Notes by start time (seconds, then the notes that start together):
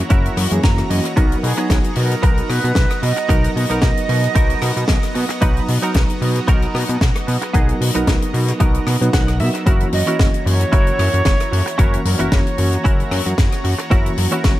Already playing: E3 A#3 C#4 E4 F#4 C#5 A#5
0.10 F#1 C#4 E4 F#4 A#4, kick, closed hi-hat
0.25 closed hi-hat
0.37 F#2, cross-stick, open hi-hat
0.51 F#2 E3 A#3 C#4 G#4, closed hi-hat
0.63 F#1 E3 A#3 C#4 F#4 A#5, kick, snare, closed hi-hat
0.78 cross-stick, closed hi-hat
0.89 F#2 D#5, muted clean electric guitar stroke, open hi-hat
1.04 muted clean electric guitar stroke, closed hi-hat
1.16 B1 F#3 B3 D#4 F#4 A#4 D#5, kick, closed hi-hat
1.32 closed hi-hat
1.43 B2 G#4, open hi-hat
1.57 F#3 B3 D#4 F#4 C#5, closed hi-hat
1.70 B1, kick, snare, closed hi-hat
1.84 closed hi-hat
1.95 B2 A#4, muted clean electric guitar stroke, open hi-hat
2.11 closed hi-hat
2.23 B1 B3 D#4 F#4 A#4, kick, closed hi-hat
2.37 closed hi-hat
2.49 B2 B4, cross-stick, open hi-hat
2.64 B2, closed hi-hat
2.75 B1, kick, snare, closed hi-hat
2.90 cross-stick, closed hi-hat
3.02 B2 D#5, muted clean electric guitar stroke, open hi-hat
3.17 muted clean electric guitar stroke, closed hi-hat
3.28 B1 F#3 B3 D#4 F#4 A#4, kick, closed hi-hat
3.44 closed hi-hat
3.55 B2 D#5, open hi-hat
3.69 B1 F#3 B3 D#4 F#4 A#4, closed hi-hat
3.82 B1, kick, snare, closed hi-hat
3.97 closed hi-hat
4.08 B2, muted clean electric guitar stroke, open hi-hat
4.24 closed hi-hat
4.35 B1 B3 D#4 F#4 A#4, kick, closed hi-hat
4.50 closed hi-hat
4.62 B2, cross-stick, open hi-hat
4.77 B2, closed hi-hat
4.88 B1, kick, snare, closed hi-hat
5.03 cross-stick, closed hi-hat
5.15 B2, muted clean electric guitar stroke, open hi-hat
5.29 muted clean electric guitar stroke, closed hi-hat
5.41 B1 F#3 B3 D#4 F#4 B4 A#5, kick, closed hi-hat
5.57 closed hi-hat
5.68 B2, open hi-hat
5.82 F#3 B3 D#4 F#4 A#4 A#5, closed hi-hat
5.94 B1, kick, snare, closed hi-hat
6.10 closed hi-hat
6.21 B2, muted clean electric guitar stroke, open hi-hat
6.36 closed hi-hat
6.47 B1 B3 D#4 F#4 A#4, kick, closed hi-hat
6.62 closed hi-hat
6.75 B2, cross-stick, open hi-hat
6.89 B2, closed hi-hat
7.01 B1, kick, snare, closed hi-hat
7.15 cross-stick, closed hi-hat
7.27 B2, muted clean electric guitar stroke, open hi-hat
7.42 muted clean electric guitar stroke, closed hi-hat
7.53 B1 F#3 B3 D#4 F#4 G#4 A#4, kick, closed hi-hat
7.69 closed hi-hat
7.81 B2, open hi-hat
7.94 B1 F#3 B3 D#4 F#4 A#4, closed hi-hat
8.07 B1, kick, snare, closed hi-hat
8.22 closed hi-hat
8.33 B2, muted clean electric guitar stroke, open hi-hat
8.48 closed hi-hat
8.60 B1 B3 D#4 F#4 A#4, kick, closed hi-hat
8.74 closed hi-hat
8.87 B2, cross-stick, open hi-hat
9.01 B2 F#3 B3 D#4 B4, closed hi-hat
9.13 B1 F#3 B3 D#4 A#4 F#5, kick, snare, closed hi-hat
9.28 cross-stick, closed hi-hat
9.39 B2 E5, muted clean electric guitar stroke, open hi-hat
9.54 muted clean electric guitar stroke, closed hi-hat
9.66 F#1 E3 A#3 C#4 E4 F#4 A#4 C#5 A#5, kick, closed hi-hat
9.80 closed hi-hat
9.92 F#2 D#5, open hi-hat
10.07 E3 A#3 C#4 E4 F#4 A#4, closed hi-hat
10.19 F#1, kick, snare, closed hi-hat
10.34 closed hi-hat
10.46 F#2 C#5, muted clean electric guitar stroke, open hi-hat
10.61 closed hi-hat
10.72 F#1 C#4 E4 F#4 A#4, kick, closed hi-hat
10.87 closed hi-hat
10.99 F#2, cross-stick, open hi-hat
11.14 F#2, closed hi-hat
11.25 F#1, kick, snare, closed hi-hat
11.40 cross-stick, closed hi-hat
11.52 F#2, muted clean electric guitar stroke, open hi-hat
11.66 muted clean electric guitar stroke, closed hi-hat
11.78 F#1 E3 A#3 C#4 E4 F#4 A#4 C#5, kick, closed hi-hat
11.93 closed hi-hat
12.05 F#2 A#4, open hi-hat
12.19 F#1 E3 A#3 C#4 E4 F#4 A#4, closed hi-hat
12.31 F#1 C#5, kick, snare, closed hi-hat
12.47 closed hi-hat
12.58 F#2, muted clean electric guitar stroke, open hi-hat
12.73 closed hi-hat
12.84 F#1 C#4 E4 F#4 A#4, kick, closed hi-hat
13.00 closed hi-hat
13.11 F#2, cross-stick, open hi-hat
13.26 F#2, closed hi-hat
13.38 F#1, kick, snare, closed hi-hat
13.52 cross-stick, closed hi-hat
13.64 F#2, muted clean electric guitar stroke, open hi-hat
13.79 muted clean electric guitar stroke, closed hi-hat
13.91 F#1 E3 A#3 C#4 E4 F#4 A#4 F#5, kick, closed hi-hat
14.06 closed hi-hat
14.17 F#2, open hi-hat
14.31 E3 A#3 C#4 E4 F#4 A#4, closed hi-hat
14.44 F#1, kick, snare, closed hi-hat